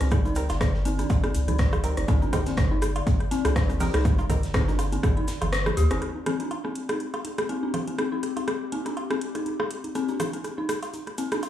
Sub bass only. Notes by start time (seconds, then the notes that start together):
0.01 C2
0.50 G1
1.34 C2
1.48 C2
1.73 C2
1.97 G1
2.08 C2
2.47 G1
3.45 C2
3.80 A#1
3.94 C2
4.43 G1
5.42 G1
5.77 D#2
5.91 G1